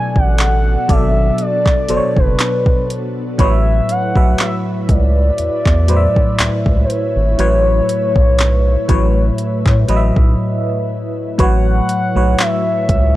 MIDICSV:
0, 0, Header, 1, 6, 480
1, 0, Start_track
1, 0, Tempo, 1000000
1, 1627, Time_signature, 4, 2, 24, 8
1, 6318, End_track
2, 0, Start_track
2, 0, Title_t, "Soft synth lead"
2, 0, Program_c, 0, 80
2, 0, Note_on_c, 0, 80, 103
2, 87, Note_on_c, 0, 78, 105
2, 94, Note_off_c, 0, 80, 0
2, 438, Note_on_c, 0, 76, 92
2, 445, Note_off_c, 0, 78, 0
2, 678, Note_on_c, 0, 74, 95
2, 685, Note_off_c, 0, 76, 0
2, 1046, Note_on_c, 0, 71, 84
2, 1053, Note_off_c, 0, 74, 0
2, 1392, Note_off_c, 0, 71, 0
2, 1634, Note_on_c, 0, 76, 105
2, 1877, Note_on_c, 0, 78, 111
2, 1884, Note_off_c, 0, 76, 0
2, 2112, Note_off_c, 0, 78, 0
2, 2118, Note_on_c, 0, 76, 97
2, 2185, Note_off_c, 0, 76, 0
2, 2353, Note_on_c, 0, 74, 110
2, 3260, Note_off_c, 0, 74, 0
2, 3285, Note_on_c, 0, 72, 58
2, 3318, Note_on_c, 0, 73, 88
2, 3326, Note_off_c, 0, 72, 0
2, 4993, Note_off_c, 0, 73, 0
2, 5480, Note_on_c, 0, 78, 111
2, 5958, Note_on_c, 0, 76, 101
2, 5966, Note_off_c, 0, 78, 0
2, 6318, Note_off_c, 0, 76, 0
2, 6318, End_track
3, 0, Start_track
3, 0, Title_t, "FM electric piano"
3, 0, Program_c, 1, 5
3, 0, Control_c, 1, 64, 127
3, 0, Note_on_c, 1, 47, 90
3, 0, Note_on_c, 1, 54, 83
3, 0, Note_on_c, 1, 69, 85
3, 0, Note_on_c, 1, 74, 96
3, 279, Note_off_c, 1, 47, 0
3, 281, Note_off_c, 1, 54, 0
3, 283, Note_off_c, 1, 69, 0
3, 284, Note_off_c, 1, 74, 0
3, 423, Note_on_c, 1, 47, 73
3, 425, Note_on_c, 1, 54, 63
3, 428, Note_on_c, 1, 69, 62
3, 432, Note_on_c, 1, 74, 82
3, 811, Note_off_c, 1, 47, 0
3, 812, Note_off_c, 1, 54, 0
3, 814, Note_off_c, 1, 69, 0
3, 816, Note_off_c, 1, 74, 0
3, 905, Note_on_c, 1, 47, 70
3, 908, Note_on_c, 1, 54, 65
3, 910, Note_on_c, 1, 69, 63
3, 914, Note_on_c, 1, 72, 64
3, 944, Note_off_c, 1, 72, 0
3, 945, Note_on_c, 1, 73, 79
3, 1480, Note_off_c, 1, 47, 0
3, 1481, Note_off_c, 1, 54, 0
3, 1482, Note_off_c, 1, 69, 0
3, 1500, Note_off_c, 1, 73, 0
3, 1624, Note_on_c, 1, 45, 94
3, 1627, Note_on_c, 1, 54, 81
3, 1630, Note_on_c, 1, 71, 86
3, 1633, Note_on_c, 1, 73, 103
3, 1634, Control_c, 1, 64, 0
3, 1730, Control_c, 1, 64, 127
3, 1912, Note_off_c, 1, 45, 0
3, 1914, Note_off_c, 1, 54, 0
3, 1915, Note_off_c, 1, 71, 0
3, 1917, Note_off_c, 1, 73, 0
3, 1993, Note_on_c, 1, 45, 72
3, 1996, Note_on_c, 1, 54, 63
3, 1999, Note_on_c, 1, 71, 67
3, 2002, Note_on_c, 1, 76, 77
3, 2652, Note_off_c, 1, 45, 0
3, 2653, Note_off_c, 1, 54, 0
3, 2655, Note_off_c, 1, 71, 0
3, 2656, Note_off_c, 1, 76, 0
3, 2823, Note_on_c, 1, 45, 74
3, 2826, Note_on_c, 1, 54, 64
3, 2830, Note_on_c, 1, 71, 67
3, 2833, Note_on_c, 1, 72, 61
3, 2863, Note_off_c, 1, 72, 0
3, 2863, Note_on_c, 1, 76, 79
3, 3399, Note_off_c, 1, 45, 0
3, 3400, Note_off_c, 1, 54, 0
3, 3402, Note_off_c, 1, 71, 0
3, 3419, Note_off_c, 1, 76, 0
3, 3544, Note_on_c, 1, 45, 86
3, 3547, Note_on_c, 1, 54, 79
3, 3551, Note_on_c, 1, 71, 80
3, 3553, Note_on_c, 1, 73, 103
3, 4120, Note_off_c, 1, 45, 0
3, 4121, Note_off_c, 1, 54, 0
3, 4123, Note_off_c, 1, 71, 0
3, 4124, Note_off_c, 1, 73, 0
3, 4263, Note_on_c, 1, 45, 84
3, 4266, Note_on_c, 1, 54, 75
3, 4269, Note_on_c, 1, 71, 76
3, 4272, Note_on_c, 1, 73, 90
3, 4651, Note_off_c, 1, 45, 0
3, 4652, Note_off_c, 1, 54, 0
3, 4654, Note_off_c, 1, 71, 0
3, 4656, Note_off_c, 1, 73, 0
3, 4743, Note_on_c, 1, 45, 83
3, 4746, Note_on_c, 1, 54, 77
3, 4749, Note_on_c, 1, 71, 77
3, 4753, Note_on_c, 1, 75, 73
3, 4783, Note_off_c, 1, 75, 0
3, 4783, Note_on_c, 1, 76, 91
3, 5319, Note_off_c, 1, 45, 0
3, 5320, Note_off_c, 1, 54, 0
3, 5322, Note_off_c, 1, 71, 0
3, 5339, Note_off_c, 1, 76, 0
3, 5463, Note_on_c, 1, 45, 87
3, 5465, Note_on_c, 1, 54, 85
3, 5469, Note_on_c, 1, 71, 80
3, 5472, Note_on_c, 1, 73, 99
3, 5473, Control_c, 1, 64, 0
3, 5544, Control_c, 1, 64, 127
3, 5752, Note_off_c, 1, 45, 0
3, 5753, Note_off_c, 1, 54, 0
3, 5755, Note_off_c, 1, 71, 0
3, 5756, Note_off_c, 1, 73, 0
3, 5833, Note_on_c, 1, 45, 72
3, 5837, Note_on_c, 1, 54, 70
3, 5839, Note_on_c, 1, 71, 65
3, 5842, Note_on_c, 1, 73, 79
3, 6318, Note_off_c, 1, 45, 0
3, 6318, Note_off_c, 1, 54, 0
3, 6318, Note_off_c, 1, 71, 0
3, 6318, Note_off_c, 1, 73, 0
3, 6318, End_track
4, 0, Start_track
4, 0, Title_t, "Ambient pad"
4, 0, Program_c, 2, 92
4, 0, Note_on_c, 2, 59, 78
4, 0, Note_on_c, 2, 62, 86
4, 0, Note_on_c, 2, 66, 70
4, 0, Note_on_c, 2, 69, 71
4, 0, Note_on_c, 2, 76, 88
4, 646, Note_off_c, 2, 76, 0
4, 667, Note_on_c, 2, 71, 85
4, 1607, Note_off_c, 2, 62, 0
4, 1608, Note_off_c, 2, 59, 0
4, 1608, Note_off_c, 2, 69, 0
4, 1626, Note_on_c, 2, 57, 79
4, 1626, Note_on_c, 2, 64, 73
4, 1627, Note_on_c, 2, 76, 88
4, 5447, Note_off_c, 2, 57, 0
4, 5447, Note_off_c, 2, 64, 0
4, 5447, Note_off_c, 2, 71, 0
4, 5448, Note_off_c, 2, 66, 0
4, 5448, Note_off_c, 2, 76, 0
4, 5466, Note_on_c, 2, 57, 78
4, 5466, Note_on_c, 2, 64, 70
4, 5466, Note_on_c, 2, 73, 81
4, 5467, Note_on_c, 2, 66, 72
4, 5467, Note_on_c, 2, 71, 69
4, 6318, Note_off_c, 2, 57, 0
4, 6318, Note_off_c, 2, 64, 0
4, 6318, Note_off_c, 2, 66, 0
4, 6318, Note_off_c, 2, 71, 0
4, 6318, Note_off_c, 2, 73, 0
4, 6318, End_track
5, 0, Start_track
5, 0, Title_t, "Analog synth bass"
5, 0, Program_c, 3, 38
5, 76, Note_on_c, 3, 33, 88
5, 368, Note_off_c, 3, 33, 0
5, 429, Note_on_c, 3, 32, 92
5, 628, Note_off_c, 3, 32, 0
5, 909, Note_on_c, 3, 30, 48
5, 960, Note_off_c, 3, 30, 0
5, 1040, Note_on_c, 3, 30, 87
5, 1131, Note_off_c, 3, 30, 0
5, 1627, Note_on_c, 3, 33, 112
5, 1827, Note_off_c, 3, 33, 0
5, 1996, Note_on_c, 3, 35, 80
5, 2088, Note_off_c, 3, 35, 0
5, 2348, Note_on_c, 3, 37, 93
5, 2548, Note_off_c, 3, 37, 0
5, 2588, Note_on_c, 3, 40, 48
5, 2639, Note_off_c, 3, 40, 0
5, 2717, Note_on_c, 3, 40, 87
5, 2917, Note_off_c, 3, 40, 0
5, 3067, Note_on_c, 3, 37, 43
5, 3119, Note_off_c, 3, 37, 0
5, 3197, Note_on_c, 3, 37, 81
5, 3289, Note_off_c, 3, 37, 0
5, 3438, Note_on_c, 3, 32, 93
5, 3529, Note_off_c, 3, 32, 0
5, 3547, Note_on_c, 3, 33, 99
5, 3747, Note_off_c, 3, 33, 0
5, 3915, Note_on_c, 3, 35, 87
5, 4208, Note_off_c, 3, 35, 0
5, 4267, Note_on_c, 3, 33, 98
5, 4467, Note_off_c, 3, 33, 0
5, 4636, Note_on_c, 3, 45, 86
5, 4728, Note_off_c, 3, 45, 0
5, 4747, Note_on_c, 3, 33, 94
5, 4855, Note_off_c, 3, 33, 0
5, 4880, Note_on_c, 3, 35, 88
5, 4970, Note_off_c, 3, 35, 0
5, 5468, Note_on_c, 3, 33, 98
5, 5668, Note_off_c, 3, 33, 0
5, 5837, Note_on_c, 3, 35, 76
5, 5929, Note_off_c, 3, 35, 0
5, 6187, Note_on_c, 3, 37, 99
5, 6318, Note_off_c, 3, 37, 0
5, 6318, End_track
6, 0, Start_track
6, 0, Title_t, "Drums"
6, 75, Note_on_c, 9, 36, 87
6, 123, Note_off_c, 9, 36, 0
6, 184, Note_on_c, 9, 42, 71
6, 189, Note_on_c, 9, 39, 88
6, 232, Note_off_c, 9, 42, 0
6, 237, Note_off_c, 9, 39, 0
6, 428, Note_on_c, 9, 36, 103
6, 428, Note_on_c, 9, 42, 64
6, 476, Note_off_c, 9, 36, 0
6, 476, Note_off_c, 9, 42, 0
6, 664, Note_on_c, 9, 42, 60
6, 712, Note_off_c, 9, 42, 0
6, 796, Note_on_c, 9, 36, 91
6, 799, Note_on_c, 9, 39, 59
6, 844, Note_off_c, 9, 36, 0
6, 847, Note_off_c, 9, 39, 0
6, 905, Note_on_c, 9, 42, 68
6, 953, Note_off_c, 9, 42, 0
6, 1039, Note_on_c, 9, 36, 87
6, 1087, Note_off_c, 9, 36, 0
6, 1148, Note_on_c, 9, 42, 70
6, 1150, Note_on_c, 9, 39, 108
6, 1196, Note_off_c, 9, 42, 0
6, 1198, Note_off_c, 9, 39, 0
6, 1277, Note_on_c, 9, 36, 101
6, 1325, Note_off_c, 9, 36, 0
6, 1393, Note_on_c, 9, 42, 64
6, 1441, Note_off_c, 9, 42, 0
6, 1627, Note_on_c, 9, 36, 113
6, 1627, Note_on_c, 9, 42, 67
6, 1675, Note_off_c, 9, 36, 0
6, 1675, Note_off_c, 9, 42, 0
6, 1868, Note_on_c, 9, 42, 70
6, 1916, Note_off_c, 9, 42, 0
6, 1995, Note_on_c, 9, 36, 86
6, 2043, Note_off_c, 9, 36, 0
6, 2104, Note_on_c, 9, 42, 66
6, 2109, Note_on_c, 9, 39, 92
6, 2152, Note_off_c, 9, 42, 0
6, 2157, Note_off_c, 9, 39, 0
6, 2347, Note_on_c, 9, 36, 99
6, 2347, Note_on_c, 9, 42, 68
6, 2395, Note_off_c, 9, 36, 0
6, 2395, Note_off_c, 9, 42, 0
6, 2583, Note_on_c, 9, 42, 59
6, 2631, Note_off_c, 9, 42, 0
6, 2716, Note_on_c, 9, 36, 92
6, 2719, Note_on_c, 9, 39, 63
6, 2764, Note_off_c, 9, 36, 0
6, 2767, Note_off_c, 9, 39, 0
6, 2824, Note_on_c, 9, 42, 68
6, 2872, Note_off_c, 9, 42, 0
6, 2958, Note_on_c, 9, 36, 90
6, 3006, Note_off_c, 9, 36, 0
6, 3067, Note_on_c, 9, 42, 75
6, 3069, Note_on_c, 9, 39, 115
6, 3115, Note_off_c, 9, 42, 0
6, 3117, Note_off_c, 9, 39, 0
6, 3196, Note_on_c, 9, 36, 101
6, 3244, Note_off_c, 9, 36, 0
6, 3311, Note_on_c, 9, 42, 64
6, 3359, Note_off_c, 9, 42, 0
6, 3546, Note_on_c, 9, 42, 67
6, 3594, Note_off_c, 9, 42, 0
6, 3787, Note_on_c, 9, 42, 71
6, 3835, Note_off_c, 9, 42, 0
6, 3915, Note_on_c, 9, 36, 88
6, 3963, Note_off_c, 9, 36, 0
6, 4025, Note_on_c, 9, 42, 67
6, 4030, Note_on_c, 9, 39, 93
6, 4073, Note_off_c, 9, 42, 0
6, 4078, Note_off_c, 9, 39, 0
6, 4266, Note_on_c, 9, 42, 67
6, 4267, Note_on_c, 9, 36, 102
6, 4314, Note_off_c, 9, 42, 0
6, 4315, Note_off_c, 9, 36, 0
6, 4504, Note_on_c, 9, 42, 62
6, 4552, Note_off_c, 9, 42, 0
6, 4636, Note_on_c, 9, 36, 88
6, 4639, Note_on_c, 9, 39, 63
6, 4684, Note_off_c, 9, 36, 0
6, 4687, Note_off_c, 9, 39, 0
6, 4745, Note_on_c, 9, 42, 69
6, 4793, Note_off_c, 9, 42, 0
6, 4879, Note_on_c, 9, 36, 93
6, 4927, Note_off_c, 9, 36, 0
6, 5467, Note_on_c, 9, 36, 112
6, 5467, Note_on_c, 9, 42, 66
6, 5515, Note_off_c, 9, 36, 0
6, 5515, Note_off_c, 9, 42, 0
6, 5708, Note_on_c, 9, 42, 76
6, 5756, Note_off_c, 9, 42, 0
6, 5945, Note_on_c, 9, 42, 66
6, 5950, Note_on_c, 9, 39, 90
6, 5993, Note_off_c, 9, 42, 0
6, 5998, Note_off_c, 9, 39, 0
6, 6187, Note_on_c, 9, 36, 100
6, 6187, Note_on_c, 9, 42, 67
6, 6235, Note_off_c, 9, 36, 0
6, 6235, Note_off_c, 9, 42, 0
6, 6318, End_track
0, 0, End_of_file